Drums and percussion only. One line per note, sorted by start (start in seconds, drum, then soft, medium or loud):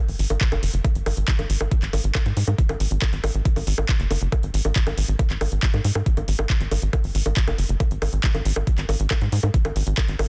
0.08 open hi-hat medium
0.19 open hi-hat loud
0.30 closed hi-hat medium
0.30 high bongo soft
0.41 kick loud
0.41 clap loud
0.41 closed hi-hat medium
0.52 closed hi-hat medium
0.52 high bongo medium
0.63 open hi-hat loud
0.74 closed hi-hat medium
0.85 kick loud
0.85 closed hi-hat medium
0.85 high bongo soft
0.95 closed hi-hat medium
1.06 open hi-hat loud
1.06 high bongo medium
1.17 closed hi-hat medium
1.28 kick loud
1.28 clap loud
1.28 closed hi-hat medium
1.39 closed hi-hat medium
1.39 high bongo soft
1.50 open hi-hat loud
1.61 high bongo medium
1.71 kick loud
1.71 closed hi-hat medium
1.82 clap soft
1.82 closed hi-hat medium
1.93 open hi-hat loud
1.93 high bongo soft
2.04 closed hi-hat soft
2.15 kick loud
2.15 clap loud
2.15 closed hi-hat medium
2.15 high bongo medium
2.26 closed hi-hat medium
2.37 open hi-hat loud
2.48 closed hi-hat medium
2.48 high bongo soft
2.58 kick loud
2.58 closed hi-hat medium
2.69 closed hi-hat medium
2.69 high bongo medium
2.80 open hi-hat loud
2.91 closed hi-hat medium
3.02 kick loud
3.02 clap loud
3.02 closed hi-hat medium
3.02 high bongo soft
3.13 closed hi-hat medium
3.24 open hi-hat loud
3.24 high bongo medium
3.34 closed hi-hat soft
3.45 kick loud
3.45 closed hi-hat medium
3.56 open hi-hat medium
3.56 high bongo soft
3.67 open hi-hat loud
3.78 high bongo medium
3.89 kick loud
3.89 clap loud
3.89 closed hi-hat medium
4.00 closed hi-hat soft
4.11 open hi-hat loud
4.11 high bongo soft
4.21 closed hi-hat medium
4.32 kick loud
4.32 closed hi-hat medium
4.32 high bongo medium
4.43 closed hi-hat medium
4.54 open hi-hat loud
4.65 high bongo soft
4.76 kick loud
4.76 clap loud
4.76 closed hi-hat medium
4.87 closed hi-hat medium
4.87 high bongo medium
4.98 open hi-hat loud
5.08 closed hi-hat medium
5.19 kick loud
5.19 closed hi-hat medium
5.19 high bongo soft
5.30 clap soft
5.30 closed hi-hat soft
5.41 open hi-hat loud
5.41 high bongo medium
5.52 closed hi-hat soft
5.63 kick loud
5.63 clap loud
5.63 closed hi-hat medium
5.74 closed hi-hat medium
5.74 high bongo soft
5.84 open hi-hat loud
5.95 high bongo medium
6.06 kick loud
6.06 closed hi-hat medium
6.17 closed hi-hat soft
6.17 high bongo soft
6.28 open hi-hat loud
6.39 high bongo medium
6.50 kick loud
6.50 clap loud
6.50 closed hi-hat medium
6.61 closed hi-hat medium
6.71 open hi-hat loud
6.71 high bongo soft
6.82 closed hi-hat soft
6.93 kick loud
6.93 closed hi-hat medium
6.93 high bongo medium
7.04 open hi-hat medium
7.15 open hi-hat loud
7.26 closed hi-hat medium
7.26 high bongo soft
7.37 kick loud
7.37 clap loud
7.37 closed hi-hat medium
7.48 closed hi-hat medium
7.48 high bongo medium
7.58 open hi-hat loud
7.69 closed hi-hat medium
7.80 kick loud
7.80 closed hi-hat medium
7.80 high bongo soft
7.91 closed hi-hat medium
8.02 open hi-hat loud
8.02 high bongo medium
8.13 closed hi-hat medium
8.24 kick loud
8.24 clap loud
8.24 closed hi-hat medium
8.35 closed hi-hat medium
8.35 high bongo soft
8.45 open hi-hat loud
8.56 high bongo medium
8.67 kick loud
8.67 closed hi-hat medium
8.78 clap soft
8.78 closed hi-hat medium
8.89 open hi-hat loud
8.89 high bongo soft
9.00 closed hi-hat medium
9.11 kick loud
9.11 clap loud
9.11 closed hi-hat medium
9.11 high bongo medium
9.21 closed hi-hat medium
9.32 open hi-hat loud
9.43 closed hi-hat medium
9.43 high bongo soft
9.54 kick loud
9.54 closed hi-hat medium
9.65 closed hi-hat medium
9.65 high bongo medium
9.76 open hi-hat medium
9.87 closed hi-hat medium
9.98 kick loud
9.98 clap loud
9.98 closed hi-hat medium
9.98 high bongo soft
10.08 closed hi-hat medium
10.19 open hi-hat loud
10.19 high bongo medium